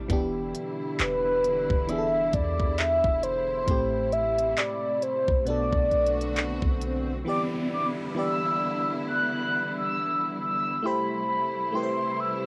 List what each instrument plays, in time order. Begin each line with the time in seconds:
Already playing: fm electric piano A2 A3 C4 E4, string section G3
0.08 808-style bass E1, string section B2 D3 E4, fm electric piano E3 B3 D4, kick, closed hi-hat
0.13 fm electric piano G4
0.55 closed hi-hat
1.00 808-style bass E1, soft synth lead B4, clap, closed hi-hat
1.44 closed hi-hat
1.70 808-style bass E1, kick
1.87 fm electric piano E3 B3 D4, soft synth lead E5, closed hi-hat
1.92 fm electric piano G#4
1.98 fm electric piano A4
2.33 808-style bass E2, soft synth lead D5, kick, closed hi-hat
2.60 kick
2.78 soft synth lead E5, clap, closed hi-hat
3.04 808-style bass E1, kick
3.23 soft synth lead C5, closed hi-hat
3.66 808-style bass A1, fm electric piano A2 A3 C4, string section C3 A3, kick, closed hi-hat, swell
3.71 fm electric piano G4
4.12 soft synth lead E5, closed hi-hat
4.38 closed hi-hat
4.57 soft synth lead D5, clap, closed hi-hat
5.02 soft synth lead C5, closed hi-hat
5.28 808-style bass B1, kick
5.45 fm electric piano B2 B3 D4, string section D3 B3 F#4, soft synth lead D5, closed hi-hat
5.50 fm electric piano A4
5.73 808-style bass B1, kick
5.91 808-style bass B1, closed hi-hat
6.06 closed hi-hat
6.21 closed hi-hat
6.36 clap, closed hi-hat
6.62 808-style bass B1, kick
6.81 closed hi-hat
7.25 string section D3 G3 B3 E4, fm electric piano E3 B3 G4, soft synth lead D6, downlifter
7.29 fm electric piano D5
7.73 soft synth lead D6
8.15 fm electric piano E3 B3 G4, soft synth lead E6
8.19 fm electric piano D5
9.07 soft synth lead F#6
9.78 soft synth lead E6
10.41 soft synth lead E6
10.82 string section C3 A3 E4, fm electric piano A3 E4 G4, soft synth lead B5
10.87 fm electric piano C5
11.72 fm electric piano A3 E4 G4, soft synth lead C6
11.77 fm electric piano B4
11.83 fm electric piano C5
12.20 soft synth lead E6